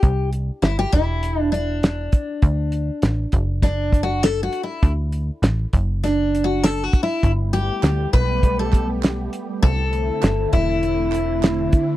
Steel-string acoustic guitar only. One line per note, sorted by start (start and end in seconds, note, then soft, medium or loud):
0.00 0.29 G4 medium
0.62 0.78 E4 medium
0.79 0.92 G4 loud
0.93 1.51 E4 loud
1.52 2.98 D4 medium
3.63 4.00 D4 medium
4.03 4.23 F#4 medium
4.23 4.42 A4 medium
4.43 4.63 F#4 medium
4.63 4.91 E4 medium
6.03 6.44 D4 medium
6.44 6.63 F#4 medium
6.63 6.83 A4 medium
6.83 7.02 F#4 medium
7.03 7.31 E4 medium
7.53 8.09 G4 medium
8.13 8.59 B4 loud
8.59 8.87 A4 medium
9.63 10.49 A4 loud
10.53 11.97 E4 medium